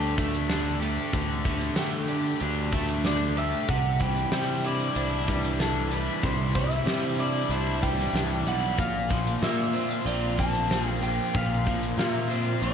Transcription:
Already playing: D2 D3 A3 D4 G4 A4
0.18 A3 D4, kick, closed hi-hat
0.34 closed hi-hat
0.48 D3 D4, snare, closed hi-hat
0.80 A3 G4, closed hi-hat
1.13 D2 D3 A3, kick, closed hi-hat
1.45 D3 A3, kick, closed hi-hat
1.61 closed hi-hat
1.76 D3 A3 G4, snare, closed hi-hat
2.08 D4 G4, closed hi-hat
2.40 D2 A3 D4 G4, closed hi-hat
2.72 A3 D4, kick, closed hi-hat
2.89 closed hi-hat
3.05 D3 D4 D5, snare, closed hi-hat
3.36 A3 G4 E5, closed hi-hat
3.68 C2 C3 E3 F#5, kick, closed hi-hat
4.00 E3 G3 C4 G5, kick, closed hi-hat
4.16 closed hi-hat
4.32 C3 G3 E4 G4, snare, closed hi-hat
4.64 D4 E4 D5, closed hi-hat
4.80 closed hi-hat
4.95 C2 C4 D4 E4, closed hi-hat
5.28 E3 G3 D4, kick, closed hi-hat
5.44 closed hi-hat
5.59 E3 D4 A4, snare, closed hi-hat
5.91 E3 G3 E4 B4, closed hi-hat
6.23 C2 C3 E3 C5, kick, closed hi-hat
6.55 E3 G3 C4 E5, kick, closed hi-hat
6.71 closed hi-hat
6.86 C3 G3 E4 G4, snare, closed hi-hat
7.18 D4 E4 D5, closed hi-hat
7.49 C2 C4 D4 E4 C5, closed hi-hat
7.82 E3 G3 D4 G5, kick, closed hi-hat
8.00 snare, closed hi-hat
8.13 C2 E3 D4, snare, closed hi-hat
8.46 B1 E3 G3 E4 F#5, closed hi-hat
8.78 A#1 A#2 F3 F5, kick, closed hi-hat
9.09 F3 A#3, kick, closed hi-hat
9.27 closed hi-hat
9.42 A#2 A#3 F4 E5, snare, closed hi-hat
9.73 C4 F4, closed hi-hat
9.91 closed hi-hat
10.06 A#1 A#3 C4 F4 D5, closed hi-hat
10.37 F3 A#3 C4 A5, kick, closed hi-hat
10.55 closed hi-hat
10.69 F3 C4, snare, closed hi-hat
10.90 G5
11.01 F3 A#3 F4 G5, closed hi-hat
11.33 A#1 A#2 F3 F5, kick, closed hi-hat
11.65 F3 A#3, kick, closed hi-hat
11.83 closed hi-hat
11.97 A#2 A#3 F4 F5, snare, closed hi-hat
12.10 E5
12.30 C4 F4, closed hi-hat
12.61 A#1 A#3 C4 F4 D5, closed hi-hat

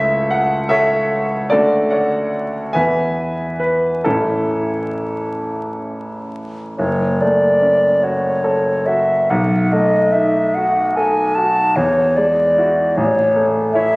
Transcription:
Already playing: C#2 A3 C#4 E4 A4 C#5 E5
0.30 F#5
0.69 A4 C#5 E5
1.50 D2 A3 C#4 D4 F#4 A4 D5
1.90 C#5 D5 F#5
2.73 E2 E3 B3 B4 E5 G#5
3.60 B4
4.04 A1 E3 A3 C#4 E4 A4
6.78 F#1 C#5
7.21 A3 D5
7.62 C#4
8.03 F#4 C#5
8.44 A4
8.86 F#4 E5
9.30 B1 F#5
9.72 A3 D#5
10.12 D#4 E5
10.55 F#4 F#5
10.95 A4 G#5
11.35 F#4 A5
11.76 E2 C#5
12.17 G#3 D5
12.58 E4 F#4
12.96 A1 C#5
13.36 A3
13.73 E4 C#5 E5

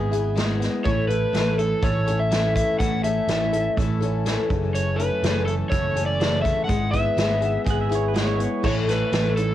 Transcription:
Already playing: G#1 G#3 B3 E4 G#4
0.12 B3 E4 G#4, closed hi-hat
0.36 G#3 B3 E4 G#4, snare, closed hi-hat
0.60 B3, snare, closed hi-hat
0.84 A1 A2 E3 A3 C#4 E4 A4 C#5, kick, closed hi-hat
1.08 A3 C#4 E4 A4 B4, closed hi-hat
1.33 A1 A2 E3 A3 C#4 E4 A4, snare, closed hi-hat
1.57 A3 C#4 E4 A4, closed hi-hat
1.82 A1 A3 C#4 E4 A4 C#5, kick, closed hi-hat
2.07 A3 C#4 E4 A4, closed hi-hat
2.19 E5
2.31 A2 E3 A3 C#4 E4 A4, snare, closed hi-hat
2.55 A3 E5, kick, closed hi-hat
2.79 A1 A2 E3 A3 C#4 E4 A4 F#5, kick, closed hi-hat
3.04 A3 C#4 E4 A4 E5, closed hi-hat
3.27 A1 A2 E3 A3 C#4 E4 A4, snare, closed hi-hat
3.53 A3 C#4 E4 A4, closed hi-hat
3.76 A1 A3 C#4 E4 A4, kick, closed hi-hat
4.00 A3 C#4 E4 A4, closed hi-hat
4.25 A2 E3 A3 C#4 E4 A4, snare, closed hi-hat
4.50 F#1 F#2 C#3 E3 A3 C#4 A4, kick, closed hi-hat
4.73 F#2 C#5, closed hi-hat
4.96 C#4 A4 B4, closed hi-hat
5.01 E3 A3
5.23 F#1 F#2 C#3 E3 A3 C#4 A4, snare, closed hi-hat
5.46 E3 A3 C#4 A4, closed hi-hat
5.70 F#1 E3 A3 C#4 A4 C#5, kick, closed hi-hat
5.95 E3 A3 C#4 A4, closed hi-hat
6.06 D5
6.20 F#2 C#3 E3 A3 C#4 A4, snare, closed hi-hat
6.42 A3 E5, kick, closed hi-hat
6.64 G#3 F#5
6.69 G#1 B3 E4 G#4, kick, closed hi-hat
6.91 E4 G#4 E5, kick, closed hi-hat
6.95 B3
7.17 G#1 G#3 B3 E4 G#4, snare, closed hi-hat
7.41 B3 E4 G#4, closed hi-hat
7.64 G#1 G#3 B3 E4 G#4, kick, closed hi-hat
7.71 F#5
7.81 E5
7.89 B3 E4 G#4, closed hi-hat
7.95 C#5
8.08 B4
8.14 G#3 B3 E4 G#4, snare, closed hi-hat
8.21 C#5
8.38 B3, closed hi-hat
8.44 C#5
8.63 A1 A2 E3 A3 C#4 E4 A4 C#5, kick, crash
8.87 A3 C#4 E4 A4 B4, snare, closed hi-hat
9.12 A1 A2 E3 A3 C#4 E4 A4, snare, closed hi-hat
9.36 C#4 E4 A4, closed hi-hat
9.40 A3

